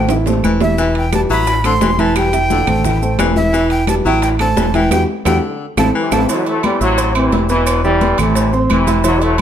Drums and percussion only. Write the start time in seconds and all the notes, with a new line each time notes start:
0.09 low bongo, high conga, high timbale, maracas
0.26 low bongo, high conga, low timbale, maracas
0.44 high conga, claves, maracas
0.61 low bongo, high conga, low timbale, maracas
0.78 high bongo, maracas
0.95 high conga, high timbale
1.13 high bongo, high conga, high timbale, low timbale, claves, maracas
1.30 high conga, maracas
1.47 high bongo, high conga, high timbale, maracas
1.64 high conga, high timbale, claves, maracas
1.81 high bongo, low bongo, high conga, low timbale, maracas
1.99 high conga, high timbale, maracas
2.16 high bongo, high conga, high timbale, claves, maracas
2.33 high bongo, high conga, high timbale, maracas
2.50 high bongo, high conga, low timbale, maracas
2.67 high bongo, high conga, low conga, high timbale, claves, maracas
2.85 high bongo, high conga, low conga, maracas
3.03 maracas
3.19 high bongo, low bongo, high conga, high timbale, low timbale, claves, maracas
3.36 high bongo, high conga, maracas
3.53 high bongo, high conga, maracas
3.70 high conga, high timbale
3.87 high bongo, high conga, high timbale, low timbale, claves, maracas
4.05 high conga, maracas
4.22 high bongo, high conga, high timbale, maracas
4.39 high conga, high timbale, claves
4.57 high bongo, low bongo, high conga, low timbale, maracas
4.74 high conga, high timbale, maracas
4.91 low bongo, high conga, high timbale, claves, maracas
5.25 low bongo, high conga, high timbale, claves, maracas
5.77 low bongo, high conga, high timbale, claves, maracas
6.12 low bongo, high conga, high timbale, claves, maracas
6.29 cowbell, high conga, low agogo, maracas
6.46 high conga, low agogo, maracas
6.63 cowbell, high conga, low agogo, claves, maracas
6.81 cowbell, high conga, maracas
6.98 cowbell, high conga, low agogo, maracas
7.15 high conga, low agogo, claves, maracas
7.32 cowbell, high conga, low timbale, low agogo, maracas
7.49 cowbell, high conga, maracas
7.67 cowbell, high conga, low agogo, claves, maracas
7.84 high conga, maracas
8.01 cowbell, high conga, low agogo, maracas
8.18 cowbell, high conga, low conga, low agogo, claves, maracas
8.35 cowbell, high conga, low agogo, maracas
8.53 high conga, maracas
8.70 cowbell, high conga, low agogo, claves, maracas
8.87 cowbell, high conga, low agogo, maracas
9.04 cowbell, high conga, low agogo, maracas
9.21 high conga, low agogo, maracas
9.38 low agogo